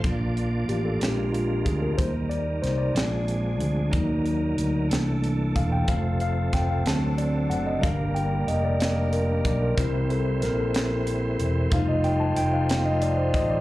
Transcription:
0.04 0.65 A#1 medium
0.04 0.47 F3 soft
0.04 0.47 A#3 soft
0.04 1.01 A#3 medium
0.04 1.97 D4 soft
0.04 0.48 D4 medium
0.04 1.97 F4 medium
0.04 1.01 D5 medium
0.04 kick medium
0.04 closed hi-hat medium
0.37 closed hi-hat soft
0.68 0.99 A1 medium
0.68 0.86 G4 medium
0.68 closed hi-hat medium
0.85 1.00 A4 medium
1.01 1.62 A#1 medium
1.01 1.95 G#3 soft
1.01 1.98 G#3 medium
1.01 1.95 C4 soft
1.01 1.95 D4 medium
1.01 1.32 G4 medium
1.01 2.94 A#4 medium
1.01 snare loud
1.01 closed hi-hat medium
1.32 1.63 F4 medium
1.32 closed hi-hat soft
1.65 1.96 D2 medium
1.65 1.81 G#4 medium
1.65 kick medium
1.65 closed hi-hat soft
1.82 1.97 A#4 medium
1.98 2.59 D#2 medium
1.98 2.95 G3 medium
1.98 2.92 G3 soft
1.98 2.92 A#3 soft
1.98 2.95 D#4 soft
1.98 2.93 D#4 medium
1.98 2.12 C5 medium
1.98 kick loud
1.98 closed hi-hat medium
2.29 2.61 D5 medium
2.29 closed hi-hat soft
2.62 2.93 C2 medium
2.62 2.80 C5 medium
2.62 snare soft
2.62 closed hi-hat medium
2.78 2.94 D5 medium
2.95 3.60 A#1 loud
2.95 3.92 F3 medium
2.95 3.89 G#3 soft
2.95 3.90 C4 soft
2.95 3.92 D4 medium
2.95 3.90 D4 medium
2.95 3.92 G#4 medium
2.95 4.54 D5 medium
2.95 snare loud
2.95 closed hi-hat medium
3.28 closed hi-hat soft
3.60 3.90 D2 medium
3.60 closed hi-hat soft
3.91 4.54 D#2 medium
3.91 4.89 F#3 medium
3.91 4.37 F#3 medium
3.91 4.37 A#3 soft
3.91 4.89 D#4 medium
3.91 4.89 A#4 medium
3.91 kick loud
3.91 closed hi-hat medium
3.95 4.38 D#4 medium
4.26 closed hi-hat soft
4.58 4.88 D2 medium
4.58 closed hi-hat soft
4.89 5.51 C2 medium
4.89 5.87 E3 medium
4.89 5.84 E3 medium
4.89 5.85 A3 soft
4.89 5.85 A#3 soft
4.89 5.87 D4 medium
4.89 5.85 D4 medium
4.89 6.83 A4 medium
4.89 snare loud
4.89 closed hi-hat medium
5.24 closed hi-hat soft
5.56 5.86 E1 medium
5.56 5.73 F5 medium
5.56 kick medium
5.56 closed hi-hat soft
5.72 5.79 G5 medium
5.88 6.49 F1 medium
5.88 6.81 F3 medium
5.88 6.85 F3 medium
5.88 6.85 A3 medium
5.88 6.82 A3 soft
5.88 7.81 C4 medium
5.88 6.82 C4 medium
5.88 6.20 F5 medium
5.88 kick loud
5.88 closed hi-hat medium
6.20 6.51 F5 medium
6.20 closed hi-hat soft
6.53 6.83 F1 medium
6.53 6.70 G5 medium
6.53 kick medium
6.53 snare soft
6.53 closed hi-hat soft
6.71 6.78 F5 medium
6.85 7.46 D2 medium
6.85 7.79 F#3 medium
6.85 7.82 F#3 medium
6.85 7.79 A3 soft
6.85 7.80 C4 medium
6.85 9.75 D4 medium
6.85 7.82 A4 medium
6.85 7.20 A5 medium
6.85 snare loud
6.85 closed hi-hat medium
7.18 7.51 D5 medium
7.18 closed hi-hat soft
7.50 7.80 F#1 medium
7.50 7.67 F#5 medium
7.50 closed hi-hat soft
7.66 7.83 D#5 medium
7.81 8.44 G1 loud
7.81 11.67 G3 medium
7.81 9.73 G3 soft
7.81 9.75 A#3 medium
7.81 9.73 A#3 soft
7.81 9.73 D4 medium
7.81 9.75 A#4 medium
7.81 8.16 F5 medium
7.81 kick loud
7.81 closed hi-hat medium
8.15 8.48 G5 medium
8.15 closed hi-hat soft
8.47 9.41 F1 medium
8.47 8.65 D#5 medium
8.47 closed hi-hat medium
8.65 9.14 D5 medium
8.80 snare loud
8.80 closed hi-hat medium
9.12 9.43 A#4 medium
9.12 closed hi-hat soft
9.45 9.75 B1 medium
9.45 9.62 D5 medium
9.45 kick medium
9.45 closed hi-hat soft
9.63 10.07 A#4 medium
9.77 10.42 C2 loud
9.77 10.21 G3 soft
9.77 11.70 C4 medium
9.77 10.21 C4 soft
9.77 11.70 E4 medium
9.77 10.21 E4 medium
9.77 13.61 C5 medium
9.77 kick loud
9.77 closed hi-hat medium
10.10 10.40 A4 medium
10.10 closed hi-hat soft
10.42 11.36 A#1 medium
10.42 10.59 A#4 medium
10.42 snare soft
10.42 closed hi-hat medium
10.59 11.20 A4 medium
10.74 snare loud
10.74 closed hi-hat medium
11.07 closed hi-hat soft
11.39 11.69 E1 medium
11.39 closed hi-hat soft
11.70 12.32 F1 loud
11.70 12.65 G3 medium
11.70 13.61 A3 medium
11.70 12.65 A3 soft
11.70 13.61 D#4 medium
11.70 12.65 D#4 medium
11.70 13.61 F4 medium
11.70 11.88 F5 loud
11.70 kick loud
11.70 closed hi-hat medium
11.89 12.05 D#5 medium
12.04 12.19 G5 medium
12.04 closed hi-hat soft
12.20 12.37 A5 loud
12.36 13.30 F1 medium
12.36 12.52 G5 loud
12.36 closed hi-hat medium
12.53 12.83 F5 medium
12.69 snare loud
12.69 closed hi-hat medium
12.86 13.02 D#5 medium
13.02 13.17 D5 medium
13.02 closed hi-hat medium
13.18 13.33 C5 medium
13.34 13.61 A1 medium
13.34 13.50 D#5 medium
13.34 kick medium
13.34 closed hi-hat medium
13.50 13.61 D5 medium

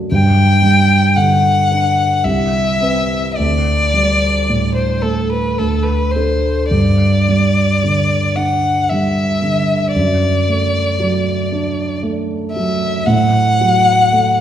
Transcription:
0.00 0.13 F#3 soft
0.00 0.13 A3 soft
0.00 0.13 D4 soft
0.12 2.21 G2 soft
0.12 1.17 G5 medium
0.62 1.48 G3 soft
1.16 2.03 D3 soft
1.16 2.26 F#5 medium
1.71 2.25 D4 soft
2.24 3.33 C2 soft
2.24 3.38 E5 medium
2.81 3.32 C4 soft
2.81 3.32 B4 soft
3.37 5.55 D2 soft
3.37 4.74 D5 medium
3.94 4.81 G3 soft
4.49 5.37 A2 soft
4.75 5.04 C5 soft
5.02 5.58 A3 soft
5.02 5.30 A4 soft
5.32 5.60 B4 soft
5.58 6.68 D2 soft
5.58 5.85 A4 soft
5.83 6.13 B4 soft
6.11 6.70 C5 soft
6.16 6.68 D4 soft
6.16 6.68 A4 soft
6.70 9.91 G2 soft
6.70 8.38 D5 medium
7.28 8.16 G3 soft
7.83 8.69 D3 soft
8.36 9.22 D4 soft
8.36 8.91 F#5 soft
8.90 9.75 G3 soft
8.90 9.92 E5 soft
9.42 9.95 D3 soft
9.92 13.03 F#2 soft
9.92 11.98 D5 soft
10.49 11.31 A3 soft
10.99 11.82 F#3 soft
11.52 12.34 D4 soft
12.03 12.86 A3 soft
12.52 13.07 F#3 soft
12.52 13.08 E5 medium
13.06 14.41 A2 medium
13.06 14.41 F#5 medium
13.61 14.41 F#3 soft
14.13 14.41 A3 soft

